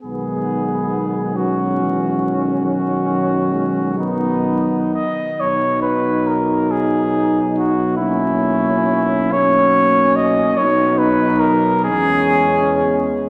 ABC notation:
X:1
M:6/8
L:1/16
Q:3/8=46
K:B
V:1 name="Cornet"
G6 F6 | F6 D4 d2 | c2 B2 A2 G4 F2 | E6 c4 d2 |
c2 B2 A2 G4 z2 |]
V:2 name="French horn section"
B,6 C6- | C6 B,4 z2 | D12 | C6 C6 |
D6 C6 |]
V:3 name="Euphonium"
G,12 | F,2 F,2 G,2 F,4- F, z | B,12 | A,6 A,6 |
B,6 C3 B,3 |]
V:4 name="Trombone" clef=bass
D,6 F,2 E,2 D,2- | D,6 D,4 z2 | F,12 | F,6 F,6 |
F,6 G,6 |]
V:5 name="Tuba" clef=bass
B,,,12- | B,,,8- B,,,2 z2 | B,,,12- | B,,,12 |
B,,,6 E,,6 |]